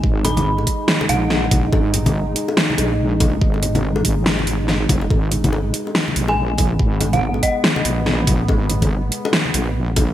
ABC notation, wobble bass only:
X:1
M:4/4
L:1/8
Q:"Swing 16ths" 1/4=142
K:G#m
V:1 name="Wobble bass" clef=bass
G,,,3 z2 A,,,3 | G,,,3 z2 A,,,3 | G,,,3 G,,,4 F,,, | G,,,3 z2 A,,,3 |
G,,,3 z2 A,,,3 | G,,,3 z2 A,,,3 |]